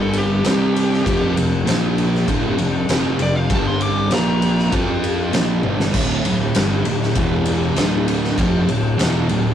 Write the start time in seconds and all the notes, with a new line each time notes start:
Already playing: G1 G2 D3 G3
0.01 A4
0.13 ride
0.18 G4
0.44 C2 C3 G3 C4, snare, ride
0.76 ride
0.94 snare
1.04 F1 F2 C3 F3, kick, ride
1.34 F1 F2 C3, ride
1.65 A#1 A#2 F3 A#3, ride
1.69 snare
1.98 ride
2.15 snare
2.26 D1 D2 A2 D3, kick, ride
2.57 F1 F2 C3, ride
2.86 F1 F2 C3 F3, ride
2.91 snare
3.19 F1 F2 C3 D5, ride
3.37 F5
3.49 G1 G2 D3 G3 A5, kick, ride
3.67 C6
3.81 D6, ride
4.10 A#1 A#2 F3 A#3 A#5, snare, ride
4.42 ride
4.59 snare
4.71 F2 F3 C4 F4, kick, ride
5.04 ride
5.32 A#1 A#2 F3 A#3, snare, ride
5.63 G1 G2 D3 G3, high tom
5.80 snare
5.94 D1 D2 A2 D3, kick, crash
6.25 D1 D2 A2, ride
6.55 G1 G2 D3 G3, snare, ride
6.85 D1 D2 A2, ride
7.03 snare
7.15 E1 E2 B2 E3, kick, ride
7.46 ride
7.76 D1 D2 A2 D3, snare, ride
8.08 ride
8.24 snare
8.37 F1 F2 C3 F3, kick, ride
8.67 D1 D2 A2, ride
8.97 E1 E2 B2 E3, ride
9.01 snare
9.28 D1 D2 A2, ride